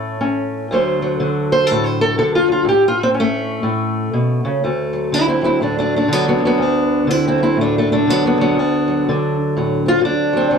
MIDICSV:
0, 0, Header, 1, 2, 480
1, 0, Start_track
1, 0, Tempo, 490597
1, 679, Time_signature, 4, 2, 24, 8
1, 10355, End_track
2, 0, Start_track
2, 0, Title_t, "Steel-string acoustic guitar"
2, 0, Program_c, 0, 25
2, 0, Note_on_c, 0, 45, 73
2, 0, Note_on_c, 0, 57, 117
2, 0, Note_on_c, 0, 61, 66
2, 190, Note_off_c, 0, 61, 0
2, 202, Note_on_c, 0, 61, 72
2, 657, Note_off_c, 0, 61, 0
2, 681, Note_off_c, 0, 57, 0
2, 682, Note_off_c, 0, 45, 0
2, 693, Note_on_c, 0, 38, 83
2, 705, Note_on_c, 0, 54, 55
2, 710, Note_on_c, 0, 50, 51
2, 716, Note_on_c, 0, 57, 54
2, 721, Note_on_c, 0, 72, 53
2, 985, Note_off_c, 0, 54, 0
2, 1000, Note_on_c, 0, 54, 52
2, 1161, Note_off_c, 0, 50, 0
2, 1172, Note_on_c, 0, 50, 72
2, 1477, Note_off_c, 0, 72, 0
2, 1489, Note_on_c, 0, 72, 110
2, 1631, Note_off_c, 0, 57, 0
2, 1631, Note_on_c, 0, 69, 85
2, 1642, Note_off_c, 0, 72, 0
2, 1674, Note_on_c, 0, 45, 76
2, 1793, Note_off_c, 0, 69, 0
2, 1797, Note_on_c, 0, 72, 94
2, 1956, Note_off_c, 0, 72, 0
2, 1969, Note_on_c, 0, 69, 118
2, 2122, Note_off_c, 0, 50, 0
2, 2122, Note_off_c, 0, 69, 0
2, 2132, Note_on_c, 0, 50, 65
2, 2133, Note_off_c, 0, 45, 0
2, 2140, Note_on_c, 0, 69, 96
2, 2287, Note_off_c, 0, 69, 0
2, 2301, Note_on_c, 0, 65, 102
2, 2413, Note_off_c, 0, 54, 0
2, 2425, Note_on_c, 0, 54, 51
2, 2447, Note_off_c, 0, 65, 0
2, 2465, Note_on_c, 0, 65, 90
2, 2589, Note_on_c, 0, 45, 79
2, 2600, Note_off_c, 0, 38, 0
2, 2602, Note_off_c, 0, 50, 0
2, 2602, Note_off_c, 0, 54, 0
2, 2609, Note_off_c, 0, 65, 0
2, 2628, Note_on_c, 0, 67, 96
2, 2770, Note_off_c, 0, 67, 0
2, 2817, Note_on_c, 0, 65, 98
2, 2945, Note_off_c, 0, 65, 0
2, 2967, Note_on_c, 0, 60, 98
2, 3071, Note_off_c, 0, 60, 0
2, 3075, Note_on_c, 0, 61, 71
2, 3130, Note_on_c, 0, 57, 112
2, 3539, Note_off_c, 0, 45, 0
2, 3551, Note_on_c, 0, 45, 71
2, 4031, Note_off_c, 0, 45, 0
2, 4045, Note_on_c, 0, 47, 71
2, 4332, Note_off_c, 0, 47, 0
2, 4352, Note_on_c, 0, 49, 68
2, 4490, Note_off_c, 0, 61, 0
2, 4524, Note_off_c, 0, 49, 0
2, 4532, Note_off_c, 0, 57, 0
2, 4537, Note_on_c, 0, 38, 73
2, 4543, Note_on_c, 0, 57, 47
2, 4824, Note_on_c, 0, 54, 44
2, 5012, Note_on_c, 0, 50, 58
2, 5026, Note_off_c, 0, 57, 0
2, 5026, Note_on_c, 0, 60, 75
2, 5032, Note_on_c, 0, 64, 86
2, 5156, Note_off_c, 0, 60, 0
2, 5168, Note_on_c, 0, 60, 65
2, 5170, Note_off_c, 0, 64, 0
2, 5180, Note_on_c, 0, 64, 79
2, 5293, Note_off_c, 0, 54, 0
2, 5297, Note_on_c, 0, 54, 43
2, 5313, Note_off_c, 0, 60, 0
2, 5324, Note_on_c, 0, 60, 68
2, 5326, Note_off_c, 0, 64, 0
2, 5336, Note_on_c, 0, 64, 78
2, 5478, Note_off_c, 0, 60, 0
2, 5484, Note_off_c, 0, 64, 0
2, 5485, Note_on_c, 0, 45, 60
2, 5498, Note_on_c, 0, 57, 55
2, 5506, Note_on_c, 0, 62, 66
2, 5645, Note_off_c, 0, 57, 0
2, 5649, Note_off_c, 0, 62, 0
2, 5660, Note_on_c, 0, 57, 73
2, 5673, Note_on_c, 0, 62, 75
2, 5806, Note_off_c, 0, 57, 0
2, 5813, Note_off_c, 0, 62, 0
2, 5835, Note_on_c, 0, 57, 75
2, 5846, Note_on_c, 0, 62, 76
2, 5947, Note_off_c, 0, 50, 0
2, 5951, Note_on_c, 0, 50, 65
2, 5959, Note_off_c, 0, 45, 0
2, 5988, Note_off_c, 0, 54, 0
2, 5992, Note_on_c, 0, 54, 77
2, 5993, Note_off_c, 0, 57, 0
2, 5993, Note_on_c, 0, 59, 88
2, 6132, Note_off_c, 0, 59, 0
2, 6133, Note_off_c, 0, 54, 0
2, 6146, Note_on_c, 0, 54, 75
2, 6152, Note_on_c, 0, 59, 77
2, 6242, Note_off_c, 0, 50, 0
2, 6246, Note_on_c, 0, 50, 45
2, 6290, Note_off_c, 0, 54, 0
2, 6293, Note_off_c, 0, 59, 0
2, 6314, Note_on_c, 0, 54, 78
2, 6327, Note_on_c, 0, 59, 93
2, 6434, Note_off_c, 0, 38, 0
2, 6437, Note_on_c, 0, 38, 70
2, 6454, Note_off_c, 0, 54, 0
2, 6460, Note_off_c, 0, 62, 0
2, 6477, Note_on_c, 0, 62, 90
2, 6914, Note_off_c, 0, 50, 0
2, 6918, Note_on_c, 0, 50, 63
2, 6945, Note_off_c, 0, 59, 0
2, 6945, Note_on_c, 0, 60, 86
2, 6951, Note_off_c, 0, 62, 0
2, 6951, Note_on_c, 0, 64, 81
2, 7090, Note_off_c, 0, 60, 0
2, 7093, Note_off_c, 0, 64, 0
2, 7118, Note_on_c, 0, 60, 63
2, 7126, Note_on_c, 0, 64, 70
2, 7219, Note_on_c, 0, 54, 47
2, 7256, Note_off_c, 0, 64, 0
2, 7257, Note_off_c, 0, 60, 0
2, 7267, Note_on_c, 0, 64, 70
2, 7272, Note_on_c, 0, 60, 69
2, 7406, Note_on_c, 0, 45, 65
2, 7412, Note_off_c, 0, 64, 0
2, 7414, Note_off_c, 0, 60, 0
2, 7445, Note_on_c, 0, 57, 64
2, 7448, Note_on_c, 0, 62, 84
2, 7581, Note_off_c, 0, 57, 0
2, 7582, Note_off_c, 0, 62, 0
2, 7614, Note_on_c, 0, 57, 76
2, 7621, Note_on_c, 0, 62, 70
2, 7737, Note_off_c, 0, 57, 0
2, 7745, Note_off_c, 0, 62, 0
2, 7749, Note_on_c, 0, 57, 79
2, 7757, Note_on_c, 0, 62, 88
2, 7882, Note_off_c, 0, 45, 0
2, 7894, Note_off_c, 0, 50, 0
2, 7898, Note_on_c, 0, 50, 68
2, 7919, Note_off_c, 0, 54, 0
2, 7923, Note_on_c, 0, 54, 66
2, 7927, Note_off_c, 0, 57, 0
2, 7927, Note_on_c, 0, 59, 89
2, 8061, Note_off_c, 0, 54, 0
2, 8061, Note_off_c, 0, 59, 0
2, 8078, Note_on_c, 0, 54, 67
2, 8091, Note_on_c, 0, 59, 85
2, 8192, Note_off_c, 0, 50, 0
2, 8195, Note_on_c, 0, 50, 49
2, 8218, Note_off_c, 0, 54, 0
2, 8220, Note_off_c, 0, 59, 0
2, 8231, Note_on_c, 0, 54, 88
2, 8233, Note_on_c, 0, 59, 91
2, 8375, Note_off_c, 0, 38, 0
2, 8375, Note_off_c, 0, 54, 0
2, 8378, Note_on_c, 0, 38, 64
2, 8379, Note_off_c, 0, 62, 0
2, 8404, Note_on_c, 0, 62, 87
2, 8685, Note_on_c, 0, 54, 49
2, 8857, Note_off_c, 0, 59, 0
2, 8887, Note_off_c, 0, 50, 0
2, 8891, Note_on_c, 0, 50, 70
2, 9157, Note_off_c, 0, 62, 0
2, 9359, Note_on_c, 0, 45, 66
2, 9362, Note_off_c, 0, 54, 0
2, 9366, Note_on_c, 0, 54, 43
2, 9645, Note_on_c, 0, 60, 42
2, 9670, Note_on_c, 0, 65, 117
2, 9785, Note_off_c, 0, 50, 0
2, 9797, Note_on_c, 0, 50, 66
2, 9817, Note_off_c, 0, 65, 0
2, 9822, Note_off_c, 0, 45, 0
2, 9833, Note_on_c, 0, 62, 104
2, 10096, Note_off_c, 0, 54, 0
2, 10108, Note_on_c, 0, 54, 50
2, 10133, Note_off_c, 0, 60, 0
2, 10144, Note_on_c, 0, 60, 93
2, 10269, Note_off_c, 0, 54, 0
2, 10271, Note_off_c, 0, 38, 0
2, 10282, Note_on_c, 0, 38, 63
2, 10282, Note_on_c, 0, 54, 50
2, 10355, Note_off_c, 0, 38, 0
2, 10355, Note_off_c, 0, 50, 0
2, 10355, Note_off_c, 0, 54, 0
2, 10355, Note_off_c, 0, 60, 0
2, 10355, Note_off_c, 0, 62, 0
2, 10355, End_track
0, 0, End_of_file